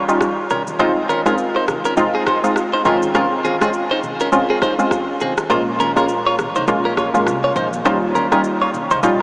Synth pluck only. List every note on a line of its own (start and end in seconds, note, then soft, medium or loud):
0.08 0.23 G3 medium
0.08 0.23 C#4 medium
0.08 0.23 D#4 medium
0.08 0.23 F4 medium
0.79 0.98 G#3 medium
0.79 0.98 C4 medium
0.79 0.98 D#4 medium
0.79 0.98 F4 loud
1.26 1.40 G#3 medium
1.26 1.41 C4 medium
1.26 1.41 D#4 medium
1.26 1.41 F4 medium
1.97 2.16 G#3 medium
1.97 2.16 C4 medium
1.97 2.16 D#4 medium
1.97 2.16 F4 loud
2.43 2.58 G#3 medium
2.43 2.58 C4 medium
2.43 2.58 D#4 medium
2.43 2.58 F4 medium
2.85 3.13 G#3 medium
2.85 3.13 C4 medium
2.85 3.13 C#4 medium
2.85 3.13 F4 loud
3.15 3.33 G#3 medium
3.15 3.33 C4 medium
3.15 3.34 C#4 medium
3.15 3.34 F4 loud
3.61 3.76 G#3 medium
3.61 3.76 C4 medium
3.61 3.76 C#4 medium
3.61 3.76 F4 medium
4.32 4.51 G#3 medium
4.32 4.51 C4 medium
4.32 4.51 C#4 medium
4.32 4.51 F4 medium
4.79 4.93 G#3 medium
4.79 4.94 C4 medium
4.79 4.94 C#4 medium
4.79 4.94 F4 medium
5.50 5.69 G#3 medium
5.50 5.69 A#3 medium
5.50 5.69 C#4 medium
5.50 5.69 F4 loud
5.96 6.11 G#3 medium
5.96 6.11 A#3 medium
5.96 6.11 C#4 medium
5.96 6.11 F4 medium
6.68 6.86 G#3 medium
6.68 6.86 A#3 medium
6.68 6.87 C#4 medium
6.68 6.87 F4 loud
7.14 7.29 G#3 medium
7.14 7.29 A#3 medium
7.14 7.29 C#4 medium
7.14 7.29 F4 medium
7.85 8.04 G3 medium
7.85 8.04 C#4 medium
7.85 8.04 D#4 medium
7.85 8.04 F4 loud
8.32 8.46 G3 medium
8.32 8.46 C#4 medium
8.32 8.47 D#4 medium
8.32 8.47 F4 medium
9.03 9.22 G3 medium
9.03 9.22 C#4 medium
9.03 9.22 D#4 medium
9.03 9.22 F4 loud